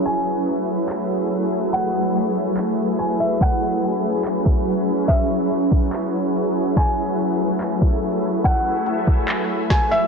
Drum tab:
HH |--------|--------|--------|--------|
CP |----x---|----x---|----x---|----x---|
SD |--------|--------|--------|--------|
BD |--------|--------|o----o--|o--o----|

HH |x-x-x-xx|x-x-x---|
CP |----x---|----x---|
SD |--------|------o-|
BD |o----o--|o--o--o-|